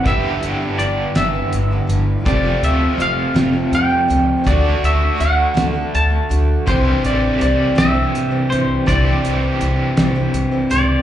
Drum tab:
HH |xxxxxx|xxxxxx|xxxxxx|xxxxxx|
SD |---o--|---o--|---o--|---o--|
BD |o-----|o-----|o-----|o-----|

HH |xxxxxx|
SD |---o--|
BD |o-----|